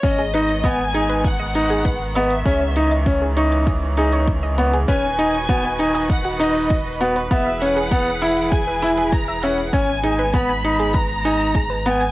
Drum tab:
HH |x-xxx-xxx-xxx-xx|x-xxx-xxx-xxx-xx|x-xxx-xxx-xxx-xx|x-xxx-xxx-xxx-xx|
BD |o---o---o---o---|o---o---o---o---|o---o---o---o---|o---o---o---o---|

HH |x-xxx-xxx-xxx-xx|
BD |o---o---o---o---|